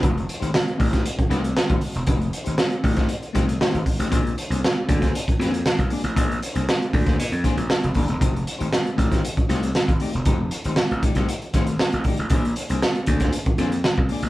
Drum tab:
HH |xxxx-xoxxxxx-xox|xxxx-xoxxxxx-xox|xxxx--xxxxxx-xox|xxxx-xoxxxxx-xox|
SD |----o--o--o-o---|----o--o--o-o---|----o--o--o-o---|----o--o--o-o---|
BD |o-----oo-o---o--|o-----oo--o---o-|o-----oo-o---o--|o-----oo--o---o-|

HH |xxxx-xxxxxxx-xox|x-xx-xxxxxxx-xox|xxxx-xxxxxxx--ox|
SD |----o--o--o-o---|----o--o--o-o---|----o--o--o-o---|
BD |o-----oo-o---o--|o-----oo--o---o-|o-----oo-o---o--|